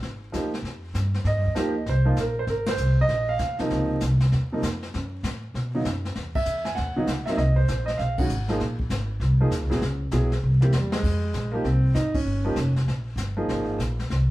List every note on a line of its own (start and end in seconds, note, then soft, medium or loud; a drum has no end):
0.03 0.32 G#1 medium
0.03 brush sweep soft
0.03 snare soft
0.32 0.62 D#2 medium
0.32 0.50 F3 medium
0.32 0.50 A#3 medium
0.32 0.51 D#4 medium
0.32 0.51 G4 medium
0.32 snare soft
0.32 hi-hat pedal soft
0.54 snare soft
0.63 0.93 F2 medium
0.63 brush sweep soft
0.63 snare soft
0.94 1.24 G2 medium
0.94 snare medium
0.94 hi-hat pedal medium
1.14 snare soft
1.24 1.36 G#2 medium
1.24 1.89 D#5 medium
1.24 brush sweep soft
1.24 snare soft
1.36 1.45 G2 medium
1.46 1.55 D#2 medium
1.55 1.86 D#2 medium
1.55 1.73 F3 medium
1.55 1.73 A#3 medium
1.55 1.73 D#4 medium
1.55 1.74 G4 medium
1.55 snare medium
1.55 hi-hat pedal soft
1.86 2.16 C2 medium
1.86 2.20 C5 medium
1.86 brush sweep soft
1.86 snare soft
2.05 2.16 F3 medium
2.05 2.16 A#3 medium
2.05 2.16 D#4 medium
2.05 2.16 F4 medium
2.17 2.47 A#1 medium
2.17 snare medium
2.17 hi-hat pedal soft
2.21 2.37 A#4 medium
2.39 2.44 C5 medium
2.47 2.77 G#1 medium
2.47 2.67 A#4 medium
2.47 brush sweep soft
2.47 snare soft
2.66 2.97 C5 medium
2.66 snare medium
2.66 ride medium
2.77 3.08 C2 medium
2.77 hi-hat pedal medium
3.01 3.31 D#5 loud
3.08 3.39 A#1 medium
3.08 brush sweep soft
3.08 snare soft
3.29 3.57 F5 loud
3.39 3.58 D#2 medium
3.39 snare medium
3.39 hi-hat pedal medium
3.59 3.99 C3 medium
3.59 3.99 F3 medium
3.59 3.99 A#3 medium
3.59 4.00 D#4 medium
3.59 muted upright bass stroke soft
3.59 snare soft
3.70 4.01 C#2 medium
3.70 brush sweep medium
3.70 snare soft
4.01 4.31 C2 medium
4.01 snare medium
4.01 hi-hat pedal medium
4.21 snare soft
4.32 4.62 D#2 medium
4.32 brush sweep soft
4.32 snare soft
4.52 4.62 C3 medium
4.52 4.62 F3 medium
4.52 4.62 A#3 medium
4.52 4.63 D#4 medium
4.62 4.92 F2 medium
4.62 snare medium
4.62 hi-hat pedal medium
4.83 snare soft
4.94 5.23 F#2 medium
4.94 brush sweep soft
4.94 snare soft
5.23 5.53 A2 medium
5.23 snare medium
5.23 hi-hat pedal medium
5.54 5.84 B2 medium
5.54 brush sweep soft
5.54 snare soft
5.75 5.85 C#3 medium
5.75 5.84 F#3 medium
5.75 5.85 B3 medium
5.75 5.85 D#4 medium
5.85 6.15 F#2 medium
5.85 snare medium
5.85 hi-hat pedal medium
6.05 snare soft
6.16 6.45 E2 medium
6.16 brush sweep soft
6.16 snare soft
6.35 6.67 E5 loud
6.35 kick medium
6.35 crash medium
6.46 6.76 E2 medium
6.46 hi-hat pedal medium
6.65 6.77 G#5 medium
6.65 snare soft
6.75 6.95 D#2 medium
6.75 7.27 F#5 medium
6.75 brush sweep soft
6.75 snare soft
6.96 7.06 C#3 medium
6.96 7.07 F#3 medium
6.96 7.07 B3 medium
6.96 7.07 D#4 medium
6.96 muted upright bass stroke soft
7.07 7.25 C#2 medium
7.07 snare medium
7.07 hi-hat pedal medium
7.26 7.38 F#3 medium
7.26 7.38 A#3 medium
7.26 7.38 C4 medium
7.26 7.38 E5 medium
7.26 muted upright bass stroke soft
7.26 snare soft
7.30 7.38 D#4 medium
7.37 7.67 C2 medium
7.37 7.56 D#5 medium
7.37 brush sweep soft
7.37 snare soft
7.56 7.88 C5 medium
7.68 7.98 A#1 medium
7.68 snare medium
7.68 hi-hat pedal soft
7.86 7.98 D#5 medium
7.86 snare soft
7.98 8.28 B1 medium
7.98 8.16 F5 medium
7.98 brush sweep soft
7.98 snare soft
8.18 8.28 D#3 medium
8.18 8.29 G#3 medium
8.18 8.29 C#4 medium
8.18 8.29 F#4 medium
8.18 8.47 F#5 medium
8.18 kick medium
8.18 crash medium
8.29 8.59 G#1 medium
8.29 hi-hat pedal medium
8.48 8.59 F3 medium
8.48 8.59 A#3 medium
8.48 8.59 D#4 medium
8.48 8.59 G#4 medium
8.48 snare soft
8.60 8.89 A#1 medium
8.60 brush sweep soft
8.60 snare soft
8.79 kick medium
8.90 9.19 G#1 medium
8.90 snare medium
8.90 hi-hat pedal medium
9.20 9.50 C2 medium
9.20 brush sweep soft
9.20 snare soft
9.41 9.50 F3 medium
9.41 9.51 A#3 medium
9.41 9.51 D#4 medium
9.41 9.51 G#4 medium
9.51 9.62 D#2 medium
9.51 snare medium
9.51 hi-hat pedal medium
9.62 9.71 C#2 medium
9.70 9.81 A#1 medium
9.70 9.80 F#3 medium
9.70 9.81 B3 medium
9.70 9.81 E4 medium
9.70 9.81 G#4 medium
9.70 snare soft
9.82 10.12 C#2 medium
9.82 brush sweep soft
9.82 snare soft
10.11 10.42 B1 medium
10.11 10.30 F#3 medium
10.11 10.30 B3 medium
10.11 10.30 E4 medium
10.11 10.30 G#4 medium
10.11 snare medium
10.11 hi-hat pedal medium
10.32 snare soft
10.43 10.73 C2 medium
10.61 10.72 A#3 medium
10.61 10.72 C4 medium
10.61 10.72 E4 medium
10.61 10.72 G4 medium
10.61 mid tom medium
10.72 11.03 E2 medium
10.72 10.94 G3 medium
10.72 snare medium
10.72 hi-hat pedal medium
10.92 11.50 G#3 medium
10.92 snare medium
11.03 11.33 F2 medium
11.03 brush sweep soft
11.03 kick medium
11.03 snare soft
11.03 crash medium
11.34 11.64 A#1 medium
11.34 snare medium
11.34 hi-hat pedal soft
11.52 11.64 F3 medium
11.52 11.63 A#3 medium
11.52 11.64 D#4 medium
11.52 11.64 G4 medium
11.64 11.94 C2 medium
11.64 11.96 C4 medium
11.64 brush sweep soft
11.64 snare soft
11.95 12.25 G#1 medium
11.95 12.15 D#4 loud
11.95 snare medium
11.95 hi-hat pedal medium
12.14 12.72 C#4 medium
12.14 kick medium
12.14 crash medium
12.25 12.55 G1 medium
12.25 brush sweep soft
12.45 12.55 F3 medium
12.45 12.55 A#3 medium
12.45 12.56 D#4 medium
12.45 12.56 G4 medium
12.56 12.86 F1 medium
12.56 snare medium
12.56 hi-hat pedal soft
12.76 snare soft
12.87 13.15 A#1 medium
12.87 brush sweep soft
12.87 snare soft
13.16 13.47 G1 medium
13.16 snare medium
13.16 hi-hat pedal medium
13.37 13.77 F3 medium
13.37 13.77 A#3 medium
13.37 13.78 D#4 medium
13.37 13.78 G#4 medium
13.49 13.78 G#1 medium
13.49 brush sweep soft
13.49 snare soft
13.78 14.09 A#1 medium
13.78 snare medium
13.78 hi-hat pedal soft
13.99 snare soft
14.10 14.31 C2 medium
14.10 brush sweep soft
14.10 snare soft